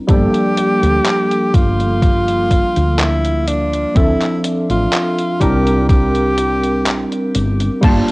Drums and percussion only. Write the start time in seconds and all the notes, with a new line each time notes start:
0.08 kick, closed hi-hat
0.34 closed hi-hat
0.57 closed hi-hat
0.83 closed hi-hat
1.06 clap, closed hi-hat
1.31 closed hi-hat
1.54 kick, closed hi-hat
1.80 closed hi-hat
2.02 kick, closed hi-hat
2.28 closed hi-hat
2.51 kick, closed hi-hat
2.76 closed hi-hat
2.99 clap, closed hi-hat
3.25 closed hi-hat
3.48 closed hi-hat
3.73 closed hi-hat
3.96 kick, closed hi-hat
4.22 clap, closed hi-hat
4.44 closed hi-hat
4.70 closed hi-hat
4.93 clap, closed hi-hat
5.19 closed hi-hat
5.41 kick, closed hi-hat
5.67 closed hi-hat
5.89 kick, closed hi-hat
6.15 closed hi-hat
6.38 closed hi-hat
6.63 closed hi-hat
6.86 clap, closed hi-hat
7.12 closed hi-hat
7.35 closed hi-hat
7.60 closed hi-hat
7.83 kick, closed hi-hat, crash
8.08 closed hi-hat